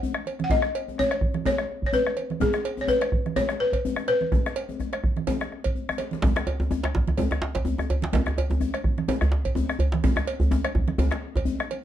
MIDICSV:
0, 0, Header, 1, 5, 480
1, 0, Start_track
1, 0, Key_signature, 5, "major"
1, 0, Tempo, 476569
1, 509, Time_signature, 4, 2, 24, 8
1, 11925, End_track
2, 0, Start_track
2, 0, Title_t, "Balafon"
2, 0, Program_c, 0, 12
2, 0, Note_on_c, 0, 78, 92
2, 414, Note_off_c, 0, 78, 0
2, 442, Note_on_c, 0, 78, 75
2, 507, Note_off_c, 0, 78, 0
2, 512, Note_on_c, 0, 75, 100
2, 999, Note_on_c, 0, 73, 103
2, 1006, Note_off_c, 0, 75, 0
2, 1441, Note_off_c, 0, 73, 0
2, 1474, Note_on_c, 0, 73, 96
2, 1866, Note_off_c, 0, 73, 0
2, 1878, Note_on_c, 0, 73, 69
2, 1946, Note_off_c, 0, 73, 0
2, 1950, Note_on_c, 0, 71, 85
2, 2296, Note_off_c, 0, 71, 0
2, 2431, Note_on_c, 0, 68, 80
2, 2832, Note_on_c, 0, 73, 67
2, 2860, Note_off_c, 0, 68, 0
2, 2904, Note_off_c, 0, 73, 0
2, 2906, Note_on_c, 0, 71, 91
2, 3387, Note_on_c, 0, 73, 87
2, 3404, Note_off_c, 0, 71, 0
2, 3628, Note_on_c, 0, 71, 77
2, 3637, Note_off_c, 0, 73, 0
2, 4099, Note_off_c, 0, 71, 0
2, 4111, Note_on_c, 0, 71, 77
2, 5753, Note_off_c, 0, 71, 0
2, 11925, End_track
3, 0, Start_track
3, 0, Title_t, "Bombo"
3, 145, Note_on_c, 9, 37, 69
3, 246, Note_off_c, 9, 37, 0
3, 394, Note_on_c, 9, 37, 22
3, 495, Note_off_c, 9, 37, 0
3, 500, Note_on_c, 9, 43, 92
3, 601, Note_off_c, 9, 43, 0
3, 628, Note_on_c, 9, 37, 73
3, 728, Note_off_c, 9, 37, 0
3, 988, Note_on_c, 9, 37, 28
3, 1089, Note_off_c, 9, 37, 0
3, 1119, Note_on_c, 9, 37, 68
3, 1220, Note_off_c, 9, 37, 0
3, 1222, Note_on_c, 9, 37, 26
3, 1222, Note_on_c, 9, 43, 91
3, 1322, Note_off_c, 9, 37, 0
3, 1322, Note_off_c, 9, 43, 0
3, 1354, Note_on_c, 9, 37, 30
3, 1455, Note_off_c, 9, 37, 0
3, 1596, Note_on_c, 9, 37, 58
3, 1696, Note_off_c, 9, 37, 0
3, 1836, Note_on_c, 9, 43, 63
3, 1937, Note_off_c, 9, 43, 0
3, 2080, Note_on_c, 9, 37, 62
3, 2181, Note_off_c, 9, 37, 0
3, 2330, Note_on_c, 9, 37, 20
3, 2430, Note_on_c, 9, 43, 86
3, 2431, Note_off_c, 9, 37, 0
3, 2531, Note_off_c, 9, 43, 0
3, 2557, Note_on_c, 9, 37, 65
3, 2657, Note_off_c, 9, 37, 0
3, 2909, Note_on_c, 9, 37, 26
3, 3010, Note_off_c, 9, 37, 0
3, 3040, Note_on_c, 9, 37, 66
3, 3141, Note_off_c, 9, 37, 0
3, 3144, Note_on_c, 9, 37, 25
3, 3144, Note_on_c, 9, 43, 85
3, 3245, Note_off_c, 9, 37, 0
3, 3245, Note_off_c, 9, 43, 0
3, 3284, Note_on_c, 9, 37, 28
3, 3384, Note_off_c, 9, 37, 0
3, 3513, Note_on_c, 9, 37, 66
3, 3614, Note_off_c, 9, 37, 0
3, 3751, Note_on_c, 9, 43, 64
3, 3852, Note_off_c, 9, 43, 0
3, 3993, Note_on_c, 9, 37, 66
3, 4093, Note_off_c, 9, 37, 0
3, 4247, Note_on_c, 9, 37, 23
3, 4347, Note_off_c, 9, 37, 0
3, 4349, Note_on_c, 9, 37, 28
3, 4349, Note_on_c, 9, 43, 92
3, 4450, Note_off_c, 9, 37, 0
3, 4450, Note_off_c, 9, 43, 0
3, 4496, Note_on_c, 9, 37, 69
3, 4596, Note_off_c, 9, 37, 0
3, 4839, Note_on_c, 9, 37, 28
3, 4940, Note_off_c, 9, 37, 0
3, 4968, Note_on_c, 9, 37, 61
3, 5069, Note_off_c, 9, 37, 0
3, 5072, Note_on_c, 9, 37, 25
3, 5072, Note_on_c, 9, 43, 92
3, 5173, Note_off_c, 9, 37, 0
3, 5173, Note_off_c, 9, 43, 0
3, 5208, Note_on_c, 9, 37, 30
3, 5309, Note_off_c, 9, 37, 0
3, 5451, Note_on_c, 9, 37, 62
3, 5552, Note_off_c, 9, 37, 0
3, 5562, Note_on_c, 9, 37, 32
3, 5663, Note_off_c, 9, 37, 0
3, 5695, Note_on_c, 9, 43, 73
3, 5796, Note_off_c, 9, 43, 0
3, 5933, Note_on_c, 9, 37, 73
3, 6033, Note_off_c, 9, 37, 0
3, 6045, Note_on_c, 9, 37, 31
3, 6146, Note_off_c, 9, 37, 0
3, 6283, Note_on_c, 9, 43, 103
3, 6383, Note_off_c, 9, 43, 0
3, 6412, Note_on_c, 9, 37, 78
3, 6512, Note_off_c, 9, 37, 0
3, 6764, Note_on_c, 9, 37, 28
3, 6865, Note_off_c, 9, 37, 0
3, 6901, Note_on_c, 9, 37, 59
3, 7001, Note_off_c, 9, 37, 0
3, 7007, Note_on_c, 9, 37, 30
3, 7007, Note_on_c, 9, 43, 87
3, 7108, Note_off_c, 9, 37, 0
3, 7108, Note_off_c, 9, 43, 0
3, 7135, Note_on_c, 9, 37, 30
3, 7236, Note_off_c, 9, 37, 0
3, 7372, Note_on_c, 9, 37, 64
3, 7473, Note_off_c, 9, 37, 0
3, 7609, Note_on_c, 9, 43, 62
3, 7710, Note_off_c, 9, 43, 0
3, 7849, Note_on_c, 9, 37, 61
3, 7950, Note_off_c, 9, 37, 0
3, 8088, Note_on_c, 9, 37, 22
3, 8189, Note_off_c, 9, 37, 0
3, 8189, Note_on_c, 9, 43, 74
3, 8290, Note_off_c, 9, 43, 0
3, 8326, Note_on_c, 9, 37, 63
3, 8426, Note_off_c, 9, 37, 0
3, 8672, Note_on_c, 9, 37, 24
3, 8773, Note_off_c, 9, 37, 0
3, 8802, Note_on_c, 9, 37, 61
3, 8902, Note_off_c, 9, 37, 0
3, 8907, Note_on_c, 9, 37, 29
3, 8907, Note_on_c, 9, 43, 94
3, 9008, Note_off_c, 9, 37, 0
3, 9008, Note_off_c, 9, 43, 0
3, 9047, Note_on_c, 9, 37, 30
3, 9148, Note_off_c, 9, 37, 0
3, 9278, Note_on_c, 9, 37, 61
3, 9379, Note_off_c, 9, 37, 0
3, 9522, Note_on_c, 9, 43, 64
3, 9623, Note_off_c, 9, 43, 0
3, 9765, Note_on_c, 9, 37, 69
3, 9866, Note_off_c, 9, 37, 0
3, 10005, Note_on_c, 9, 37, 29
3, 10106, Note_off_c, 9, 37, 0
3, 10112, Note_on_c, 9, 43, 103
3, 10213, Note_off_c, 9, 43, 0
3, 10241, Note_on_c, 9, 37, 84
3, 10342, Note_off_c, 9, 37, 0
3, 10588, Note_on_c, 9, 37, 32
3, 10689, Note_off_c, 9, 37, 0
3, 10723, Note_on_c, 9, 37, 81
3, 10824, Note_off_c, 9, 37, 0
3, 10830, Note_on_c, 9, 37, 34
3, 10830, Note_on_c, 9, 43, 92
3, 10930, Note_off_c, 9, 37, 0
3, 10930, Note_off_c, 9, 43, 0
3, 10961, Note_on_c, 9, 37, 36
3, 11062, Note_off_c, 9, 37, 0
3, 11195, Note_on_c, 9, 37, 76
3, 11296, Note_off_c, 9, 37, 0
3, 11439, Note_on_c, 9, 43, 74
3, 11539, Note_off_c, 9, 43, 0
3, 11685, Note_on_c, 9, 37, 81
3, 11786, Note_off_c, 9, 37, 0
3, 11925, End_track
4, 0, Start_track
4, 0, Title_t, "Djembe"
4, 30, Note_on_c, 9, 64, 70
4, 131, Note_off_c, 9, 64, 0
4, 405, Note_on_c, 9, 62, 23
4, 506, Note_off_c, 9, 62, 0
4, 516, Note_on_c, 9, 64, 77
4, 617, Note_off_c, 9, 64, 0
4, 651, Note_on_c, 9, 62, 54
4, 751, Note_off_c, 9, 62, 0
4, 890, Note_on_c, 9, 63, 57
4, 991, Note_off_c, 9, 63, 0
4, 1001, Note_on_c, 9, 64, 76
4, 1102, Note_off_c, 9, 64, 0
4, 1472, Note_on_c, 9, 63, 68
4, 1472, Note_on_c, 9, 64, 72
4, 1572, Note_off_c, 9, 63, 0
4, 1572, Note_off_c, 9, 64, 0
4, 1606, Note_on_c, 9, 62, 50
4, 1707, Note_off_c, 9, 62, 0
4, 1850, Note_on_c, 9, 62, 20
4, 1941, Note_on_c, 9, 64, 71
4, 1951, Note_off_c, 9, 62, 0
4, 2042, Note_off_c, 9, 64, 0
4, 2070, Note_on_c, 9, 63, 47
4, 2171, Note_off_c, 9, 63, 0
4, 2317, Note_on_c, 9, 62, 24
4, 2418, Note_off_c, 9, 62, 0
4, 2420, Note_on_c, 9, 64, 78
4, 2521, Note_off_c, 9, 64, 0
4, 2551, Note_on_c, 9, 62, 61
4, 2652, Note_off_c, 9, 62, 0
4, 2794, Note_on_c, 9, 63, 61
4, 2895, Note_off_c, 9, 63, 0
4, 2898, Note_on_c, 9, 64, 74
4, 2999, Note_off_c, 9, 64, 0
4, 3387, Note_on_c, 9, 63, 73
4, 3387, Note_on_c, 9, 64, 67
4, 3487, Note_off_c, 9, 63, 0
4, 3487, Note_off_c, 9, 64, 0
4, 3523, Note_on_c, 9, 62, 62
4, 3623, Note_off_c, 9, 62, 0
4, 3766, Note_on_c, 9, 62, 24
4, 3867, Note_off_c, 9, 62, 0
4, 3878, Note_on_c, 9, 64, 71
4, 3979, Note_off_c, 9, 64, 0
4, 4005, Note_on_c, 9, 63, 50
4, 4106, Note_off_c, 9, 63, 0
4, 4254, Note_on_c, 9, 62, 24
4, 4355, Note_off_c, 9, 62, 0
4, 4364, Note_on_c, 9, 62, 23
4, 4364, Note_on_c, 9, 64, 73
4, 4465, Note_off_c, 9, 62, 0
4, 4465, Note_off_c, 9, 64, 0
4, 4493, Note_on_c, 9, 62, 59
4, 4594, Note_off_c, 9, 62, 0
4, 4722, Note_on_c, 9, 63, 56
4, 4823, Note_off_c, 9, 63, 0
4, 4830, Note_on_c, 9, 62, 22
4, 4830, Note_on_c, 9, 64, 66
4, 4931, Note_off_c, 9, 62, 0
4, 4931, Note_off_c, 9, 64, 0
4, 4973, Note_on_c, 9, 62, 24
4, 5073, Note_off_c, 9, 62, 0
4, 5312, Note_on_c, 9, 63, 64
4, 5312, Note_on_c, 9, 64, 61
4, 5413, Note_off_c, 9, 63, 0
4, 5413, Note_off_c, 9, 64, 0
4, 5446, Note_on_c, 9, 62, 52
4, 5547, Note_off_c, 9, 62, 0
4, 5683, Note_on_c, 9, 62, 18
4, 5783, Note_off_c, 9, 62, 0
4, 5794, Note_on_c, 9, 64, 41
4, 5894, Note_off_c, 9, 64, 0
4, 5938, Note_on_c, 9, 64, 45
4, 6038, Note_on_c, 9, 62, 56
4, 6039, Note_off_c, 9, 64, 0
4, 6138, Note_off_c, 9, 62, 0
4, 6174, Note_on_c, 9, 62, 57
4, 6267, Note_off_c, 9, 62, 0
4, 6267, Note_on_c, 9, 62, 117
4, 6281, Note_on_c, 9, 64, 74
4, 6368, Note_off_c, 9, 62, 0
4, 6382, Note_off_c, 9, 64, 0
4, 6406, Note_on_c, 9, 62, 77
4, 6407, Note_off_c, 9, 62, 0
4, 6407, Note_on_c, 9, 62, 66
4, 6508, Note_off_c, 9, 62, 0
4, 6514, Note_on_c, 9, 63, 84
4, 6615, Note_off_c, 9, 63, 0
4, 6645, Note_on_c, 9, 63, 90
4, 6646, Note_off_c, 9, 63, 0
4, 6646, Note_on_c, 9, 63, 52
4, 6747, Note_off_c, 9, 63, 0
4, 6755, Note_on_c, 9, 63, 78
4, 6755, Note_on_c, 9, 64, 74
4, 6856, Note_off_c, 9, 63, 0
4, 6856, Note_off_c, 9, 64, 0
4, 6886, Note_on_c, 9, 62, 101
4, 6986, Note_off_c, 9, 62, 0
4, 6997, Note_on_c, 9, 62, 80
4, 7098, Note_off_c, 9, 62, 0
4, 7131, Note_on_c, 9, 63, 84
4, 7231, Note_off_c, 9, 63, 0
4, 7231, Note_on_c, 9, 63, 68
4, 7231, Note_on_c, 9, 64, 66
4, 7241, Note_off_c, 9, 63, 0
4, 7241, Note_on_c, 9, 63, 99
4, 7332, Note_off_c, 9, 64, 0
4, 7342, Note_off_c, 9, 63, 0
4, 7361, Note_on_c, 9, 62, 58
4, 7362, Note_on_c, 9, 63, 82
4, 7462, Note_off_c, 9, 62, 0
4, 7463, Note_off_c, 9, 63, 0
4, 7470, Note_on_c, 9, 62, 114
4, 7571, Note_off_c, 9, 62, 0
4, 7602, Note_on_c, 9, 62, 19
4, 7605, Note_off_c, 9, 62, 0
4, 7605, Note_on_c, 9, 62, 84
4, 7703, Note_on_c, 9, 63, 74
4, 7706, Note_off_c, 9, 62, 0
4, 7707, Note_on_c, 9, 64, 65
4, 7804, Note_off_c, 9, 63, 0
4, 7808, Note_off_c, 9, 64, 0
4, 7840, Note_on_c, 9, 63, 73
4, 7847, Note_off_c, 9, 63, 0
4, 7847, Note_on_c, 9, 63, 53
4, 7948, Note_off_c, 9, 63, 0
4, 7956, Note_on_c, 9, 63, 93
4, 8057, Note_off_c, 9, 63, 0
4, 8072, Note_on_c, 9, 62, 23
4, 8094, Note_off_c, 9, 62, 0
4, 8094, Note_on_c, 9, 62, 98
4, 8185, Note_on_c, 9, 64, 66
4, 8195, Note_off_c, 9, 62, 0
4, 8210, Note_on_c, 9, 62, 83
4, 8286, Note_off_c, 9, 64, 0
4, 8310, Note_off_c, 9, 62, 0
4, 8320, Note_on_c, 9, 62, 61
4, 8338, Note_on_c, 9, 63, 78
4, 8420, Note_off_c, 9, 62, 0
4, 8438, Note_off_c, 9, 63, 0
4, 8438, Note_on_c, 9, 63, 82
4, 8539, Note_off_c, 9, 63, 0
4, 8558, Note_on_c, 9, 63, 59
4, 8568, Note_off_c, 9, 63, 0
4, 8568, Note_on_c, 9, 63, 95
4, 8666, Note_on_c, 9, 64, 74
4, 8669, Note_off_c, 9, 63, 0
4, 8767, Note_off_c, 9, 64, 0
4, 9148, Note_on_c, 9, 63, 65
4, 9148, Note_on_c, 9, 64, 74
4, 9248, Note_off_c, 9, 63, 0
4, 9248, Note_off_c, 9, 64, 0
4, 9284, Note_on_c, 9, 64, 82
4, 9285, Note_on_c, 9, 62, 61
4, 9384, Note_off_c, 9, 62, 0
4, 9384, Note_on_c, 9, 62, 87
4, 9385, Note_off_c, 9, 64, 0
4, 9485, Note_off_c, 9, 62, 0
4, 9521, Note_on_c, 9, 62, 23
4, 9621, Note_off_c, 9, 62, 0
4, 9621, Note_on_c, 9, 63, 82
4, 9629, Note_on_c, 9, 64, 80
4, 9722, Note_off_c, 9, 63, 0
4, 9730, Note_off_c, 9, 64, 0
4, 9758, Note_on_c, 9, 63, 61
4, 9859, Note_off_c, 9, 63, 0
4, 9861, Note_on_c, 9, 64, 80
4, 9962, Note_off_c, 9, 64, 0
4, 9993, Note_on_c, 9, 62, 88
4, 10005, Note_off_c, 9, 62, 0
4, 10005, Note_on_c, 9, 62, 28
4, 10105, Note_off_c, 9, 62, 0
4, 10113, Note_on_c, 9, 64, 87
4, 10213, Note_off_c, 9, 64, 0
4, 10233, Note_on_c, 9, 63, 76
4, 10245, Note_on_c, 9, 62, 65
4, 10334, Note_off_c, 9, 63, 0
4, 10346, Note_off_c, 9, 62, 0
4, 10474, Note_on_c, 9, 64, 90
4, 10484, Note_on_c, 9, 63, 64
4, 10574, Note_off_c, 9, 64, 0
4, 10584, Note_off_c, 9, 63, 0
4, 10585, Note_on_c, 9, 64, 81
4, 10592, Note_on_c, 9, 62, 77
4, 10686, Note_off_c, 9, 64, 0
4, 10692, Note_off_c, 9, 62, 0
4, 10827, Note_on_c, 9, 63, 87
4, 10928, Note_off_c, 9, 63, 0
4, 11063, Note_on_c, 9, 63, 75
4, 11063, Note_on_c, 9, 64, 74
4, 11164, Note_off_c, 9, 63, 0
4, 11164, Note_off_c, 9, 64, 0
4, 11189, Note_on_c, 9, 62, 66
4, 11202, Note_off_c, 9, 62, 0
4, 11202, Note_on_c, 9, 62, 79
4, 11303, Note_off_c, 9, 62, 0
4, 11427, Note_on_c, 9, 62, 22
4, 11437, Note_on_c, 9, 63, 78
4, 11527, Note_off_c, 9, 62, 0
4, 11536, Note_on_c, 9, 64, 75
4, 11538, Note_off_c, 9, 63, 0
4, 11637, Note_off_c, 9, 64, 0
4, 11669, Note_on_c, 9, 63, 49
4, 11770, Note_off_c, 9, 63, 0
4, 11925, End_track
5, 0, Start_track
5, 0, Title_t, "Drums"
5, 260, Note_on_c, 9, 63, 22
5, 271, Note_on_c, 9, 56, 51
5, 361, Note_off_c, 9, 63, 0
5, 372, Note_off_c, 9, 56, 0
5, 400, Note_on_c, 9, 63, 57
5, 501, Note_off_c, 9, 63, 0
5, 510, Note_on_c, 9, 63, 26
5, 510, Note_on_c, 9, 64, 79
5, 610, Note_off_c, 9, 63, 0
5, 610, Note_off_c, 9, 64, 0
5, 757, Note_on_c, 9, 56, 53
5, 857, Note_off_c, 9, 56, 0
5, 1123, Note_on_c, 9, 56, 46
5, 1224, Note_off_c, 9, 56, 0
5, 1229, Note_on_c, 9, 63, 29
5, 1330, Note_off_c, 9, 63, 0
5, 1351, Note_on_c, 9, 63, 59
5, 1452, Note_off_c, 9, 63, 0
5, 1465, Note_on_c, 9, 63, 22
5, 1465, Note_on_c, 9, 64, 66
5, 1480, Note_on_c, 9, 56, 48
5, 1566, Note_off_c, 9, 63, 0
5, 1566, Note_off_c, 9, 64, 0
5, 1581, Note_off_c, 9, 56, 0
5, 2183, Note_on_c, 9, 56, 47
5, 2191, Note_on_c, 9, 63, 23
5, 2284, Note_off_c, 9, 56, 0
5, 2291, Note_off_c, 9, 63, 0
5, 2318, Note_on_c, 9, 63, 53
5, 2419, Note_off_c, 9, 63, 0
5, 2429, Note_on_c, 9, 63, 29
5, 2429, Note_on_c, 9, 64, 81
5, 2530, Note_off_c, 9, 63, 0
5, 2530, Note_off_c, 9, 64, 0
5, 2671, Note_on_c, 9, 56, 55
5, 2771, Note_off_c, 9, 56, 0
5, 3035, Note_on_c, 9, 56, 50
5, 3136, Note_off_c, 9, 56, 0
5, 3153, Note_on_c, 9, 63, 24
5, 3253, Note_off_c, 9, 63, 0
5, 3283, Note_on_c, 9, 63, 55
5, 3384, Note_off_c, 9, 63, 0
5, 3389, Note_on_c, 9, 56, 50
5, 3389, Note_on_c, 9, 63, 20
5, 3389, Note_on_c, 9, 64, 62
5, 3490, Note_off_c, 9, 56, 0
5, 3490, Note_off_c, 9, 63, 0
5, 3490, Note_off_c, 9, 64, 0
5, 3760, Note_on_c, 9, 56, 51
5, 3861, Note_off_c, 9, 56, 0
5, 4107, Note_on_c, 9, 56, 49
5, 4110, Note_on_c, 9, 63, 20
5, 4208, Note_off_c, 9, 56, 0
5, 4211, Note_off_c, 9, 63, 0
5, 4239, Note_on_c, 9, 63, 43
5, 4339, Note_off_c, 9, 63, 0
5, 4352, Note_on_c, 9, 64, 62
5, 4453, Note_off_c, 9, 64, 0
5, 4593, Note_on_c, 9, 56, 58
5, 4693, Note_off_c, 9, 56, 0
5, 4727, Note_on_c, 9, 63, 20
5, 4828, Note_off_c, 9, 63, 0
5, 4837, Note_on_c, 9, 63, 19
5, 4938, Note_off_c, 9, 63, 0
5, 4963, Note_on_c, 9, 56, 45
5, 5064, Note_off_c, 9, 56, 0
5, 5072, Note_on_c, 9, 63, 22
5, 5172, Note_off_c, 9, 63, 0
5, 5202, Note_on_c, 9, 63, 53
5, 5303, Note_off_c, 9, 63, 0
5, 5309, Note_on_c, 9, 56, 55
5, 5310, Note_on_c, 9, 64, 61
5, 5410, Note_off_c, 9, 56, 0
5, 5411, Note_off_c, 9, 64, 0
5, 5684, Note_on_c, 9, 56, 53
5, 5685, Note_on_c, 9, 63, 20
5, 5784, Note_off_c, 9, 56, 0
5, 5786, Note_off_c, 9, 63, 0
5, 5926, Note_on_c, 9, 63, 22
5, 6024, Note_on_c, 9, 56, 54
5, 6025, Note_off_c, 9, 63, 0
5, 6025, Note_on_c, 9, 63, 22
5, 6125, Note_off_c, 9, 56, 0
5, 6126, Note_off_c, 9, 63, 0
5, 6155, Note_on_c, 9, 63, 50
5, 6256, Note_off_c, 9, 63, 0
5, 6271, Note_on_c, 9, 63, 22
5, 6271, Note_on_c, 9, 64, 70
5, 6372, Note_off_c, 9, 63, 0
5, 6372, Note_off_c, 9, 64, 0
5, 6515, Note_on_c, 9, 56, 47
5, 6615, Note_off_c, 9, 56, 0
5, 6883, Note_on_c, 9, 56, 38
5, 6984, Note_off_c, 9, 56, 0
5, 6998, Note_on_c, 9, 63, 27
5, 7099, Note_off_c, 9, 63, 0
5, 7125, Note_on_c, 9, 63, 57
5, 7226, Note_off_c, 9, 63, 0
5, 7227, Note_on_c, 9, 56, 50
5, 7231, Note_on_c, 9, 63, 20
5, 7231, Note_on_c, 9, 64, 69
5, 7327, Note_off_c, 9, 56, 0
5, 7332, Note_off_c, 9, 63, 0
5, 7332, Note_off_c, 9, 64, 0
5, 7602, Note_on_c, 9, 56, 50
5, 7703, Note_off_c, 9, 56, 0
5, 7954, Note_on_c, 9, 63, 23
5, 7957, Note_on_c, 9, 56, 48
5, 8055, Note_off_c, 9, 63, 0
5, 8057, Note_off_c, 9, 56, 0
5, 8079, Note_on_c, 9, 63, 59
5, 8180, Note_off_c, 9, 63, 0
5, 8191, Note_on_c, 9, 63, 25
5, 8191, Note_on_c, 9, 64, 92
5, 8292, Note_off_c, 9, 63, 0
5, 8292, Note_off_c, 9, 64, 0
5, 8443, Note_on_c, 9, 56, 56
5, 8543, Note_off_c, 9, 56, 0
5, 8807, Note_on_c, 9, 56, 43
5, 8908, Note_off_c, 9, 56, 0
5, 9043, Note_on_c, 9, 63, 61
5, 9144, Note_off_c, 9, 63, 0
5, 9152, Note_on_c, 9, 56, 51
5, 9153, Note_on_c, 9, 63, 25
5, 9153, Note_on_c, 9, 64, 78
5, 9253, Note_off_c, 9, 56, 0
5, 9253, Note_off_c, 9, 63, 0
5, 9253, Note_off_c, 9, 64, 0
5, 9520, Note_on_c, 9, 56, 51
5, 9620, Note_off_c, 9, 56, 0
5, 9869, Note_on_c, 9, 56, 49
5, 9874, Note_on_c, 9, 63, 25
5, 9970, Note_off_c, 9, 56, 0
5, 9975, Note_off_c, 9, 63, 0
5, 10008, Note_on_c, 9, 63, 69
5, 10108, Note_off_c, 9, 63, 0
5, 10110, Note_on_c, 9, 63, 28
5, 10110, Note_on_c, 9, 64, 86
5, 10210, Note_off_c, 9, 63, 0
5, 10210, Note_off_c, 9, 64, 0
5, 10349, Note_on_c, 9, 56, 59
5, 10449, Note_off_c, 9, 56, 0
5, 10721, Note_on_c, 9, 56, 49
5, 10822, Note_off_c, 9, 56, 0
5, 10829, Note_on_c, 9, 63, 29
5, 10929, Note_off_c, 9, 63, 0
5, 10955, Note_on_c, 9, 63, 65
5, 11056, Note_off_c, 9, 63, 0
5, 11067, Note_on_c, 9, 63, 22
5, 11067, Note_on_c, 9, 64, 66
5, 11070, Note_on_c, 9, 56, 50
5, 11168, Note_off_c, 9, 63, 0
5, 11168, Note_off_c, 9, 64, 0
5, 11171, Note_off_c, 9, 56, 0
5, 11449, Note_on_c, 9, 56, 53
5, 11550, Note_off_c, 9, 56, 0
5, 11793, Note_on_c, 9, 56, 53
5, 11797, Note_on_c, 9, 63, 22
5, 11893, Note_off_c, 9, 56, 0
5, 11898, Note_off_c, 9, 63, 0
5, 11925, End_track
0, 0, End_of_file